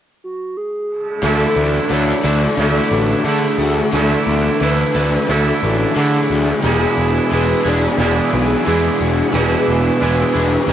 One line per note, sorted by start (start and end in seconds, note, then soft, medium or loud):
0.24 0.58 F#4 medium
0.57 1.27 G#4 loud
1.22 1.44 D2 medium
1.22 1.89 D3 medium
1.22 1.88 E3 medium
1.22 1.91 A3 medium
1.22 10.73 D4 medium
1.22 1.92 D4 medium
1.22 2.24 A4 medium
1.22 1.94 A4 medium
1.22 6.59 E5 medium
1.22 10.73 E6 medium
1.26 1.92 E4 medium
1.26 1.92 A4 loud
1.56 1.78 D2 medium
1.89 2.12 D2 medium
1.89 2.57 D3 medium
1.89 2.58 E3 medium
1.89 2.28 A3 medium
1.89 2.26 D4 medium
1.89 2.23 A4 medium
1.89 2.26 C#5 medium
1.93 2.24 E4 medium
2.23 2.45 D2 medium
2.23 2.60 D4 medium
2.23 2.60 E4 medium
2.23 2.59 A4 medium
2.23 2.92 D5 loud
2.23 2.58 G#5 medium
2.28 2.58 A3 medium
2.57 2.79 D2 medium
2.57 3.24 D3 medium
2.57 3.24 E3 medium
2.57 3.25 A3 medium
2.57 3.27 D4 loud
2.57 2.92 A4 medium
2.57 3.27 A4 medium
2.61 3.28 E4 medium
2.91 3.13 A1 medium
2.91 3.24 F#4 medium
3.24 3.46 D3 medium
3.24 3.92 D3 medium
3.24 3.92 E3 medium
3.24 3.93 A3 medium
3.24 3.95 D4 medium
3.24 3.98 G#4 loud
3.28 3.96 E4 medium
3.28 3.93 A4 medium
3.58 3.80 D2 medium
3.58 3.94 F#4 medium
3.92 4.14 D2 medium
3.92 4.58 D3 medium
3.92 4.60 E3 medium
3.92 4.60 A3 medium
3.92 4.61 D4 medium
3.92 4.61 A4 medium
3.92 4.62 A4 medium
3.92 10.73 G#5 medium
3.97 4.62 E4 medium
3.97 4.65 A4 loud
4.27 4.48 D2 medium
4.60 4.82 D2 medium
4.60 5.27 D3 medium
4.60 5.28 E3 medium
4.60 4.96 A3 medium
4.60 4.95 D4 medium
4.60 4.93 E4 medium
4.60 5.34 B4 medium
4.64 4.93 A4 medium
4.94 5.16 D2 medium
4.94 5.28 A3 medium
4.94 5.30 D4 medium
4.94 5.31 E4 medium
4.94 5.30 A4 medium
4.94 5.29 G#5 medium
5.28 5.50 D2 medium
5.28 5.95 D3 medium
5.28 5.93 E3 medium
5.28 5.97 A3 medium
5.28 5.99 D4 medium
5.28 5.99 E4 medium
5.28 5.63 A4 medium
5.28 5.96 A4 medium
5.32 5.67 A4 medium
5.63 5.84 A1 loud
5.63 6.01 F#4 medium
5.94 6.17 D3 medium
5.94 6.62 D3 medium
5.94 6.62 E3 medium
5.94 6.62 A4 medium
5.98 6.63 A3 medium
5.98 6.66 D4 medium
5.98 6.66 E4 medium
5.98 6.65 G#4 medium
6.30 6.51 D2 medium
6.30 6.64 F#4 medium
6.61 6.85 E1 loud
6.61 7.68 E2 medium
6.61 7.65 B2 medium
6.61 7.29 E3 medium
6.61 7.31 B3 medium
6.61 7.70 G#4 medium
6.61 9.30 B5 medium
6.65 7.31 G#3 loud
6.65 7.33 D4 medium
6.65 7.33 E4 loud
6.65 7.33 G#4 loud
6.65 7.35 G#4 medium
6.97 7.18 E1 medium
7.30 7.52 E1 medium
7.30 7.66 E3 medium
7.30 7.65 G#3 medium
7.30 7.68 B3 medium
7.30 7.64 D4 medium
7.30 7.64 G#4 medium
7.34 7.63 E4 medium
7.34 7.70 B4 medium
7.63 7.86 E1 medium
7.63 7.99 E3 medium
7.63 7.99 G#3 medium
7.63 8.01 D4 medium
7.63 8.01 E4 medium
7.63 8.00 F#4 medium
7.63 8.00 G#4 medium
7.68 7.98 B3 medium
7.68 8.36 D5 loud
7.98 8.19 E1 medium
7.98 9.00 E2 medium
7.98 9.00 B2 medium
7.98 8.64 E3 medium
7.98 8.65 G#3 medium
7.98 8.65 B3 medium
7.98 8.68 D4 medium
7.98 8.68 E4 medium
7.98 8.32 G#4 medium
7.98 8.67 G#4 medium
8.33 8.54 B1 medium
8.33 8.69 F#4 medium
8.33 9.00 G#4 medium
8.65 8.88 E2 medium
8.65 9.33 E3 medium
8.65 9.33 G#3 medium
8.65 9.32 B3 medium
8.65 9.34 D4 medium
8.65 9.34 E4 medium
8.65 9.34 G#4 medium
9.00 9.21 E1 medium
9.00 9.34 F#4 medium
9.32 9.54 E1 medium
9.32 10.34 E2 medium
9.32 10.35 B2 loud
9.32 9.98 E3 medium
9.32 10.00 G#3 medium
9.32 10.00 B3 medium
9.32 10.01 D4 loud
9.32 10.02 E4 medium
9.32 10.01 G#4 medium
9.32 10.02 G#4 medium
9.32 10.73 B4 loud
9.32 10.73 C#6 medium
9.68 9.89 E1 medium
9.99 10.23 E1 medium
9.99 10.35 E3 medium
9.99 10.33 G#3 medium
9.99 10.36 B3 medium
9.99 10.33 D4 medium
9.99 10.32 E4 medium
10.03 10.33 G#4 medium
10.33 10.56 E1 medium
10.33 10.68 E3 medium
10.33 10.68 G#3 medium
10.33 10.69 D4 medium
10.33 10.70 E4 medium
10.33 10.69 F#4 medium
10.33 10.69 G#4 medium
10.37 10.67 B3 medium
10.66 10.73 E1 medium
10.66 10.73 E2 medium
10.66 10.73 B2 medium
10.66 10.73 E3 medium
10.66 10.73 G#3 medium
10.66 10.73 B3 medium
10.66 10.73 D4 medium
10.66 10.73 G#4 medium